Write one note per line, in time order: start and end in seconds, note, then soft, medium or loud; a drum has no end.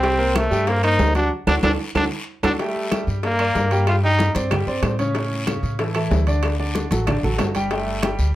0.00 0.45 C2 medium
0.00 0.16 G3 medium
0.00 0.38 C4 loud
0.00 0.16 G4 medium
0.00 0.16 G5 medium
0.00 high bongo medium
0.00 high conga soft
0.00 high timbale medium
0.00 long guiro medium
0.18 0.45 A#3 medium
0.18 0.45 A#4 medium
0.18 0.45 C5 medium
0.18 high conga soft
0.35 0.69 A3 loud
0.35 high bongo medium
0.35 high conga loud
0.35 high timbale medium
0.35 short guiro medium
0.35 claves medium
0.50 0.96 G2 medium
0.50 0.64 G3 medium
0.50 0.64 G4 medium
0.50 0.64 G5 medium
0.50 high conga soft
0.50 short guiro medium
0.67 0.80 A#3 medium
0.67 0.84 A#3 loud
0.67 0.80 A#4 medium
0.67 0.81 C5 medium
0.67 high bongo medium
0.67 high conga soft
0.67 high timbale medium
0.67 long guiro medium
0.83 1.09 A#3 medium
0.83 1.14 D#4 loud
0.83 1.09 A#4 medium
0.83 1.10 C5 medium
0.83 high conga soft
0.83 high timbale loud
0.83 claves medium
0.99 1.29 D2 loud
0.99 high bongo medium
0.99 low bongo medium
0.99 high conga medium
0.99 low timbale medium
0.99 short guiro medium
1.15 1.29 F#3 medium
1.15 1.31 D4 medium
1.15 1.29 F#4 medium
1.15 1.29 F#5 medium
1.15 high conga medium
1.15 high timbale medium
1.15 short guiro medium
1.47 1.59 D2 loud
1.47 1.58 D4 medium
1.47 1.56 D4 loud
1.47 1.58 F#4 loud
1.47 1.57 A4 medium
1.47 low bongo medium
1.47 high conga loud
1.47 high timbale loud
1.47 long guiro medium
1.47 claves loud
1.63 1.75 D2 loud
1.63 1.74 D4 medium
1.63 1.71 D4 loud
1.63 1.74 F#4 medium
1.63 1.74 A4 loud
1.63 low bongo loud
1.63 high conga loud
1.63 high timbale loud
1.63 long guiro medium
1.63 claves loud
1.95 2.07 D2 loud
1.95 2.06 D4 medium
1.95 2.04 D4 loud
1.95 2.06 F#4 medium
1.95 2.06 A4 medium
1.95 low bongo loud
1.95 high conga loud
1.95 high timbale medium
1.95 claves loud
2.43 2.55 D2 medium
2.43 2.54 D4 medium
2.43 2.52 D4 medium
2.43 2.54 F#4 loud
2.43 2.54 A4 loud
2.43 low bongo loud
2.43 high conga loud
2.43 high timbale loud
2.43 long guiro medium
2.43 claves loud
2.59 2.86 G3 medium
2.59 3.06 A3 medium
2.59 2.86 G4 medium
2.59 2.86 G5 medium
2.59 high bongo medium
2.59 high conga soft
2.59 high timbale medium
2.59 long guiro medium
2.76 high conga soft
2.91 3.17 G3 medium
2.91 3.18 G4 medium
2.91 3.18 G5 medium
2.91 high bongo medium
2.91 high conga loud
2.91 high timbale medium
2.91 short guiro medium
2.91 claves medium
3.07 3.52 G2 medium
3.07 high conga soft
3.07 short guiro medium
3.23 3.37 A#3 medium
3.23 3.84 A#3 loud
3.23 3.37 A#4 medium
3.23 3.37 D5 medium
3.23 high bongo medium
3.23 high conga soft
3.23 high timbale medium
3.23 long guiro medium
3.39 3.66 A#3 medium
3.39 3.66 A#4 medium
3.39 3.66 D5 medium
3.39 high conga soft
3.39 high timbale medium
3.39 claves medium
3.55 4.30 G2 medium
3.55 high bongo medium
3.55 low bongo medium
3.55 high conga medium
3.55 short guiro medium
3.71 3.98 G3 medium
3.71 3.98 G4 medium
3.71 3.98 G5 medium
3.71 high timbale medium
3.71 short guiro medium
3.87 3.95 F4 medium
3.87 high bongo medium
3.87 high conga soft
3.87 high timbale medium
3.87 long guiro medium
3.87 claves medium
4.03 4.30 G3 medium
4.03 4.33 D#4 loud
4.03 4.30 G4 medium
4.03 4.30 G5 medium
4.03 high bongo soft
4.03 high conga soft
4.19 high bongo medium
4.19 high conga medium
4.19 high timbale medium
4.19 short guiro medium
4.34 4.65 G2 medium
4.34 4.48 C4 medium
4.34 4.48 C5 medium
4.34 4.49 D5 medium
4.34 high bongo soft
4.34 high conga medium
4.34 high timbale medium
4.34 short guiro medium
4.51 4.64 G3 medium
4.51 4.65 G4 medium
4.51 4.65 G5 medium
4.51 high bongo medium
4.51 high conga soft
4.51 low conga medium
4.51 high timbale medium
4.51 long guiro medium
4.51 claves medium
4.67 4.82 G2 medium
4.67 4.93 C4 medium
4.67 4.94 C5 medium
4.67 4.94 D5 medium
4.67 high bongo soft
4.67 high conga soft
4.83 5.57 A2 medium
4.83 high bongo medium
4.83 low bongo medium
4.83 high conga medium
4.83 high timbale medium
4.83 low timbale medium
4.83 short guiro medium
4.83 claves medium
4.99 5.12 C#3 medium
4.99 5.13 C#4 medium
4.99 5.13 C#5 medium
4.99 high conga medium
4.99 high timbale medium
4.99 short guiro medium
5.15 5.41 C#3 medium
5.15 5.42 C#4 medium
5.15 5.42 C#5 medium
5.15 high bongo medium
5.15 high conga soft
5.15 high timbale medium
5.15 long guiro medium
5.32 high conga soft
5.47 5.73 C#3 medium
5.47 5.73 C#4 medium
5.47 5.74 C#5 medium
5.47 high bongo medium
5.47 high conga loud
5.47 high timbale medium
5.47 short guiro medium
5.47 claves medium
5.63 6.08 A2 medium
5.63 high conga soft
5.63 short guiro medium
5.79 5.92 E3 medium
5.79 5.92 E4 medium
5.79 5.92 A4 medium
5.79 high bongo medium
5.79 high conga soft
5.79 high timbale medium
5.79 long guiro medium
5.95 6.21 E3 medium
5.95 6.22 E4 medium
5.95 6.22 A4 medium
5.95 high conga soft
5.95 high timbale medium
5.95 claves medium
6.11 6.85 D2 medium
6.11 high bongo medium
6.11 low bongo medium
6.11 high conga medium
6.11 low timbale medium
6.11 short guiro medium
6.27 6.53 D3 medium
6.27 6.53 D4 medium
6.27 6.54 D5 medium
6.27 high timbale medium
6.27 short guiro medium
6.43 high bongo medium
6.43 high conga soft
6.43 high timbale medium
6.43 long guiro medium
6.43 claves medium
6.59 6.85 D3 medium
6.59 6.86 D4 medium
6.59 6.86 D5 medium
6.59 high bongo soft
6.59 high conga soft
6.75 high bongo medium
6.75 high conga medium
6.75 high timbale medium
6.75 short guiro medium
6.91 7.21 A1 medium
6.91 7.04 F#3 medium
6.91 7.05 F#4 medium
6.91 7.05 A4 medium
6.91 high bongo soft
6.91 high conga loud
6.91 high timbale medium
6.91 short guiro medium
7.07 7.20 D3 medium
7.07 7.20 D4 medium
7.07 7.21 D5 medium
7.07 high bongo medium
7.07 high conga soft
7.07 low conga medium
7.07 high timbale medium
7.07 long guiro medium
7.07 claves medium
7.23 7.38 A1 medium
7.23 7.50 F#3 medium
7.23 7.50 F#4 medium
7.23 7.50 A4 medium
7.23 high bongo soft
7.23 high conga soft
7.23 low conga medium
7.38 8.13 G1 medium
7.38 high bongo medium
7.38 low bongo medium
7.38 high conga medium
7.38 high timbale medium
7.38 low timbale medium
7.38 short guiro medium
7.38 claves medium
7.55 7.68 G3 medium
7.55 7.69 G4 medium
7.55 7.68 G5 medium
7.55 high conga medium
7.55 high timbale medium
7.55 short guiro medium
7.71 7.97 G3 medium
7.71 8.16 A3 medium
7.71 7.97 G4 medium
7.71 7.98 G5 medium
7.71 high bongo medium
7.71 high conga soft
7.71 high timbale medium
7.71 long guiro medium
7.87 high conga soft
8.02 8.29 G3 medium
8.02 8.29 G4 medium
8.02 8.29 G5 medium
8.02 high bongo medium
8.02 high conga loud
8.02 high timbale medium
8.02 short guiro medium
8.02 claves medium
8.19 8.35 D2 medium
8.19 high conga soft
8.19 short guiro medium